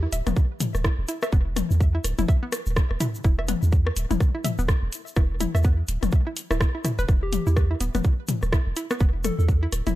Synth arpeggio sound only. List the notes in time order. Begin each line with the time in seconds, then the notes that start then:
0.03 E4
0.13 E5
0.27 B3
0.84 E4
1.09 E4
1.23 E5
1.32 B3
1.95 E4
2.19 E4
2.28 E5
2.43 B3
3.00 E4
3.25 E4
3.39 E5
3.48 B3
4.11 E4
4.35 E4
4.44 E5
4.59 B3
5.17 E4
5.40 E4
5.55 E5
5.64 B3
6.27 E4
6.51 E4
6.60 E4
6.75 E4
6.85 E4
6.99 B4
7.47 E4
7.71 E4
7.81 B3
7.95 B3
8.53 E4
8.77 E4
8.91 B3
9.01 B3
9.63 E4
9.87 E4